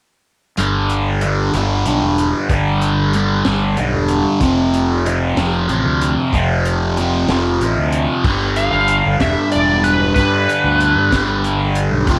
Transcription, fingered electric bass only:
0, 0, Header, 1, 2, 480
1, 0, Start_track
1, 0, Tempo, 638978
1, 435, Time_signature, 6, 3, 24, 8
1, 9157, End_track
2, 0, Start_track
2, 0, Title_t, "Fingered electric bass"
2, 0, Program_c, 0, 33
2, 435, Note_on_c, 0, 31, 71
2, 1125, Note_off_c, 0, 31, 0
2, 1159, Note_on_c, 0, 31, 87
2, 1380, Note_off_c, 0, 31, 0
2, 1395, Note_on_c, 0, 35, 68
2, 1506, Note_off_c, 0, 35, 0
2, 1515, Note_on_c, 0, 28, 73
2, 1737, Note_off_c, 0, 28, 0
2, 1872, Note_on_c, 0, 31, 79
2, 2564, Note_off_c, 0, 31, 0
2, 2600, Note_on_c, 0, 31, 90
2, 2820, Note_off_c, 0, 31, 0
2, 2838, Note_on_c, 0, 35, 79
2, 2948, Note_off_c, 0, 35, 0
2, 2960, Note_on_c, 0, 28, 74
2, 3180, Note_off_c, 0, 28, 0
2, 3314, Note_on_c, 0, 29, 75
2, 4005, Note_off_c, 0, 29, 0
2, 4032, Note_on_c, 0, 29, 83
2, 4256, Note_off_c, 0, 29, 0
2, 4277, Note_on_c, 0, 33, 78
2, 4387, Note_off_c, 0, 33, 0
2, 4394, Note_on_c, 0, 38, 74
2, 4617, Note_off_c, 0, 38, 0
2, 4756, Note_on_c, 0, 29, 73
2, 5446, Note_off_c, 0, 29, 0
2, 5474, Note_on_c, 0, 29, 100
2, 5697, Note_off_c, 0, 29, 0
2, 5715, Note_on_c, 0, 33, 78
2, 5826, Note_off_c, 0, 33, 0
2, 5836, Note_on_c, 0, 38, 78
2, 6057, Note_off_c, 0, 38, 0
2, 6189, Note_on_c, 0, 31, 93
2, 6525, Note_off_c, 0, 31, 0
2, 6555, Note_on_c, 0, 31, 81
2, 6776, Note_off_c, 0, 31, 0
2, 6805, Note_on_c, 0, 31, 74
2, 6908, Note_off_c, 0, 31, 0
2, 6912, Note_on_c, 0, 28, 85
2, 7024, Note_off_c, 0, 28, 0
2, 7172, Note_on_c, 0, 28, 77
2, 7612, Note_off_c, 0, 28, 0
2, 7633, Note_on_c, 0, 43, 87
2, 7855, Note_off_c, 0, 43, 0
2, 7994, Note_on_c, 0, 38, 83
2, 8215, Note_off_c, 0, 38, 0
2, 8230, Note_on_c, 0, 43, 74
2, 8342, Note_off_c, 0, 43, 0
2, 8356, Note_on_c, 0, 31, 106
2, 8923, Note_off_c, 0, 31, 0
2, 8949, Note_on_c, 0, 35, 87
2, 9061, Note_off_c, 0, 35, 0
2, 9069, Note_on_c, 0, 29, 98
2, 9157, Note_off_c, 0, 29, 0
2, 9157, End_track
0, 0, End_of_file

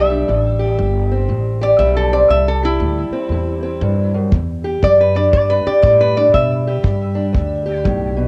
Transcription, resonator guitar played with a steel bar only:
0, 0, Header, 1, 2, 480
1, 0, Start_track
1, 0, Key_signature, 1, "minor"
1, 0, Tempo, 504626
1, 270, Time_signature, 4, 2, 24, 8
1, 7875, End_track
2, 0, Start_track
2, 0, Title_t, "Resonator guitar played with a steel bar"
2, 0, Program_c, 0, 25
2, 0, Note_on_c, 0, 76, 93
2, 883, Note_off_c, 0, 76, 0
2, 1548, Note_on_c, 0, 74, 105
2, 1700, Note_on_c, 0, 76, 89
2, 1704, Note_off_c, 0, 74, 0
2, 1860, Note_off_c, 0, 76, 0
2, 1869, Note_on_c, 0, 69, 95
2, 2024, Note_off_c, 0, 69, 0
2, 2026, Note_on_c, 0, 74, 87
2, 2183, Note_off_c, 0, 74, 0
2, 2191, Note_on_c, 0, 76, 102
2, 2345, Note_off_c, 0, 76, 0
2, 2359, Note_on_c, 0, 69, 90
2, 2510, Note_off_c, 0, 69, 0
2, 2519, Note_on_c, 0, 64, 96
2, 3916, Note_off_c, 0, 64, 0
2, 4602, Note_on_c, 0, 74, 104
2, 4751, Note_off_c, 0, 74, 0
2, 4762, Note_on_c, 0, 71, 88
2, 4910, Note_on_c, 0, 74, 100
2, 4911, Note_off_c, 0, 71, 0
2, 5059, Note_off_c, 0, 74, 0
2, 5071, Note_on_c, 0, 74, 104
2, 5225, Note_off_c, 0, 74, 0
2, 5230, Note_on_c, 0, 71, 99
2, 5385, Note_off_c, 0, 71, 0
2, 5390, Note_on_c, 0, 74, 84
2, 5528, Note_off_c, 0, 74, 0
2, 5539, Note_on_c, 0, 74, 91
2, 5699, Note_off_c, 0, 74, 0
2, 5713, Note_on_c, 0, 71, 100
2, 5866, Note_off_c, 0, 71, 0
2, 5870, Note_on_c, 0, 74, 93
2, 6025, Note_off_c, 0, 74, 0
2, 6030, Note_on_c, 0, 76, 98
2, 7431, Note_off_c, 0, 76, 0
2, 7875, End_track
0, 0, End_of_file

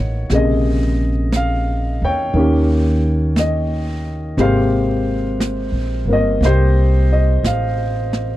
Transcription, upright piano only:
0, 0, Header, 1, 2, 480
1, 0, Start_track
1, 0, Key_signature, -4, "major"
1, 0, Tempo, 1020408
1, 145, Time_signature, 4, 2, 24, 8
1, 3936, End_track
2, 0, Start_track
2, 0, Title_t, "Upright piano"
2, 0, Program_c, 0, 0
2, 0, Control_c, 0, 64, 127
2, 0, Note_on_c, 0, 51, 46
2, 0, Note_on_c, 0, 58, 45
2, 0, Note_on_c, 0, 59, 44
2, 0, Note_on_c, 0, 66, 53
2, 0, Note_on_c, 0, 73, 67
2, 142, Note_off_c, 0, 51, 0
2, 143, Note_off_c, 0, 58, 0
2, 147, Note_on_c, 0, 49, 39
2, 150, Note_off_c, 0, 59, 0
2, 150, Control_c, 0, 64, 0
2, 150, Note_on_c, 0, 58, 39
2, 152, Note_on_c, 0, 48, 38
2, 153, Note_on_c, 0, 68, 46
2, 154, Note_off_c, 0, 66, 0
2, 162, Note_off_c, 0, 73, 0
2, 162, Note_on_c, 0, 75, 72
2, 228, Control_c, 0, 64, 127
2, 615, Note_off_c, 0, 75, 0
2, 640, Note_on_c, 0, 77, 74
2, 962, Note_on_c, 0, 79, 80
2, 963, Note_on_c, 0, 73, 57
2, 968, Note_off_c, 0, 77, 0
2, 1098, Note_off_c, 0, 58, 0
2, 1098, Note_on_c, 0, 51, 53
2, 1105, Note_off_c, 0, 49, 0
2, 1105, Note_on_c, 0, 58, 50
2, 1107, Note_off_c, 0, 48, 0
2, 1108, Note_off_c, 0, 68, 0
2, 1110, Control_c, 0, 64, 0
2, 1113, Note_on_c, 0, 61, 49
2, 1121, Note_on_c, 0, 67, 54
2, 1188, Control_c, 0, 64, 127
2, 1595, Note_on_c, 0, 75, 64
2, 1605, Note_off_c, 0, 79, 0
2, 1893, Note_off_c, 0, 73, 0
2, 2056, Note_off_c, 0, 51, 0
2, 2058, Note_off_c, 0, 58, 0
2, 2058, Note_off_c, 0, 67, 0
2, 2060, Note_on_c, 0, 48, 48
2, 2062, Note_on_c, 0, 56, 45
2, 2064, Note_off_c, 0, 61, 0
2, 2065, Note_on_c, 0, 58, 43
2, 2065, Note_on_c, 0, 67, 58
2, 2066, Control_c, 0, 64, 0
2, 2071, Note_on_c, 0, 72, 58
2, 2071, Note_on_c, 0, 77, 74
2, 2080, Note_off_c, 0, 75, 0
2, 2136, Control_c, 0, 64, 127
2, 2852, Note_off_c, 0, 58, 0
2, 2859, Note_on_c, 0, 58, 37
2, 2866, Note_on_c, 0, 60, 35
2, 2872, Note_on_c, 0, 70, 47
2, 2882, Note_on_c, 0, 75, 74
2, 2894, Note_off_c, 0, 77, 0
2, 3004, Note_off_c, 0, 72, 0
2, 3030, Note_off_c, 0, 75, 0
2, 3031, Note_off_c, 0, 67, 0
2, 3034, Note_on_c, 0, 72, 73
2, 3038, Note_on_c, 0, 67, 57
2, 3351, Note_on_c, 0, 75, 66
2, 3362, Note_off_c, 0, 72, 0
2, 3491, Note_off_c, 0, 75, 0
2, 3510, Note_on_c, 0, 77, 65
2, 3936, Note_off_c, 0, 48, 0
2, 3936, Note_off_c, 0, 56, 0
2, 3936, Note_off_c, 0, 58, 0
2, 3936, Note_off_c, 0, 60, 0
2, 3936, Note_off_c, 0, 67, 0
2, 3936, Note_off_c, 0, 70, 0
2, 3936, Note_off_c, 0, 77, 0
2, 3936, End_track
0, 0, End_of_file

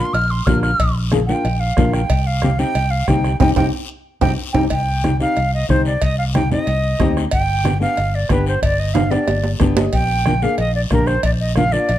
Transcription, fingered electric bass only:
0, 0, Header, 1, 2, 480
1, 0, Start_track
1, 0, Key_signature, -3, "minor"
1, 0, Tempo, 326442
1, 1170, Time_signature, 4, 2, 24, 8
1, 17624, End_track
2, 0, Start_track
2, 0, Title_t, "Fingered electric bass"
2, 0, Program_c, 0, 33
2, 201, Note_on_c, 0, 34, 101
2, 589, Note_off_c, 0, 34, 0
2, 689, Note_on_c, 0, 34, 98
2, 1073, Note_off_c, 0, 34, 0
2, 1164, Note_on_c, 0, 34, 96
2, 1934, Note_off_c, 0, 34, 0
2, 2125, Note_on_c, 0, 34, 98
2, 2511, Note_off_c, 0, 34, 0
2, 2610, Note_on_c, 0, 34, 92
2, 2994, Note_off_c, 0, 34, 0
2, 3090, Note_on_c, 0, 36, 89
2, 3858, Note_off_c, 0, 36, 0
2, 4046, Note_on_c, 0, 36, 104
2, 4431, Note_off_c, 0, 36, 0
2, 4529, Note_on_c, 0, 36, 100
2, 4913, Note_off_c, 0, 36, 0
2, 5007, Note_on_c, 0, 36, 98
2, 5187, Note_off_c, 0, 36, 0
2, 5241, Note_on_c, 0, 36, 100
2, 5424, Note_off_c, 0, 36, 0
2, 6203, Note_on_c, 0, 36, 97
2, 6385, Note_off_c, 0, 36, 0
2, 6679, Note_on_c, 0, 36, 90
2, 6863, Note_off_c, 0, 36, 0
2, 6926, Note_on_c, 0, 36, 97
2, 7695, Note_off_c, 0, 36, 0
2, 7896, Note_on_c, 0, 36, 91
2, 8278, Note_off_c, 0, 36, 0
2, 8376, Note_on_c, 0, 36, 84
2, 8758, Note_off_c, 0, 36, 0
2, 8853, Note_on_c, 0, 36, 86
2, 9620, Note_off_c, 0, 36, 0
2, 9812, Note_on_c, 0, 36, 108
2, 10195, Note_off_c, 0, 36, 0
2, 10288, Note_on_c, 0, 38, 83
2, 10673, Note_off_c, 0, 38, 0
2, 10776, Note_on_c, 0, 31, 87
2, 11541, Note_off_c, 0, 31, 0
2, 11734, Note_on_c, 0, 31, 100
2, 12116, Note_off_c, 0, 31, 0
2, 12205, Note_on_c, 0, 31, 81
2, 12590, Note_off_c, 0, 31, 0
2, 12679, Note_on_c, 0, 31, 93
2, 13451, Note_off_c, 0, 31, 0
2, 13639, Note_on_c, 0, 31, 96
2, 14027, Note_off_c, 0, 31, 0
2, 14121, Note_on_c, 0, 31, 84
2, 14508, Note_off_c, 0, 31, 0
2, 14606, Note_on_c, 0, 34, 91
2, 15375, Note_off_c, 0, 34, 0
2, 15561, Note_on_c, 0, 34, 107
2, 15948, Note_off_c, 0, 34, 0
2, 16037, Note_on_c, 0, 34, 90
2, 16425, Note_off_c, 0, 34, 0
2, 16518, Note_on_c, 0, 34, 90
2, 17289, Note_off_c, 0, 34, 0
2, 17488, Note_on_c, 0, 34, 99
2, 17624, Note_off_c, 0, 34, 0
2, 17624, End_track
0, 0, End_of_file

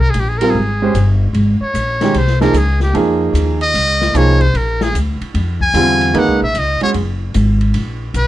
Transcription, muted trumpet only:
0, 0, Header, 1, 2, 480
1, 0, Start_track
1, 0, Tempo, 400267
1, 1620, Time_signature, 4, 2, 24, 8
1, 9922, End_track
2, 0, Start_track
2, 0, Title_t, "Muted trumpet"
2, 0, Program_c, 0, 59
2, 0, Note_on_c, 0, 70, 91
2, 123, Note_on_c, 0, 68, 68
2, 141, Note_off_c, 0, 70, 0
2, 238, Note_on_c, 0, 67, 75
2, 256, Note_off_c, 0, 68, 0
2, 345, Note_on_c, 0, 68, 68
2, 363, Note_off_c, 0, 67, 0
2, 453, Note_on_c, 0, 70, 89
2, 471, Note_off_c, 0, 68, 0
2, 601, Note_on_c, 0, 68, 69
2, 619, Note_off_c, 0, 70, 0
2, 1310, Note_off_c, 0, 68, 0
2, 1947, Note_on_c, 0, 73, 79
2, 2614, Note_on_c, 0, 72, 75
2, 2632, Note_off_c, 0, 73, 0
2, 2892, Note_off_c, 0, 72, 0
2, 2899, Note_on_c, 0, 70, 77
2, 3084, Note_on_c, 0, 68, 79
2, 3102, Note_off_c, 0, 70, 0
2, 3385, Note_off_c, 0, 68, 0
2, 3392, Note_on_c, 0, 67, 69
2, 3537, Note_off_c, 0, 67, 0
2, 4345, Note_on_c, 0, 75, 112
2, 5002, Note_on_c, 0, 73, 94
2, 5020, Note_off_c, 0, 75, 0
2, 5291, Note_on_c, 0, 72, 81
2, 5309, Note_off_c, 0, 73, 0
2, 5475, Note_on_c, 0, 70, 73
2, 5493, Note_off_c, 0, 72, 0
2, 5786, Note_on_c, 0, 68, 81
2, 5804, Note_off_c, 0, 70, 0
2, 5943, Note_off_c, 0, 68, 0
2, 6742, Note_on_c, 0, 80, 113
2, 7416, Note_on_c, 0, 78, 85
2, 7434, Note_off_c, 0, 80, 0
2, 7707, Note_off_c, 0, 78, 0
2, 7714, Note_on_c, 0, 76, 80
2, 7896, Note_on_c, 0, 75, 86
2, 7914, Note_off_c, 0, 76, 0
2, 8183, Note_off_c, 0, 75, 0
2, 8190, Note_on_c, 0, 73, 88
2, 8283, Note_off_c, 0, 73, 0
2, 9799, Note_on_c, 0, 71, 83
2, 9922, Note_off_c, 0, 71, 0
2, 9922, End_track
0, 0, End_of_file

